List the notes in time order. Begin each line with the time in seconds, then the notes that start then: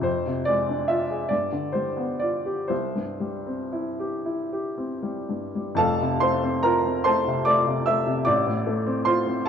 0.01 F2 C5
0.27 C3
0.45 G#3 D5
0.69 D4
0.88 F4 E5
1.10 G#4
1.29 G2 D5
1.52 D3
1.72 G3 C5
1.97 B3
2.20 F4 D5
2.46 G4
2.68 C2 C5
2.95 G2
3.20 G3
3.47 C4
3.72 E4
4.00 G4
4.26 E4
4.53 G4
4.78 C4
5.03 G3
5.29 G2
5.55 G3
5.75 F1 F2 A4 F5 A5
6.01 C3
6.20 A3 C5 C6
6.43 C4
6.63 F4 A#4 A#5
6.85 C4
7.04 A3 C5 A5 C6
7.27 C3
7.45 A3 D5 D6
7.67 C3
7.86 A3 E5 E6
8.07 C3
8.25 A1 D5 D6
8.47 A2
8.67 A3
8.86 C4
9.05 F4 C5 C6
9.27 C4
9.46 A5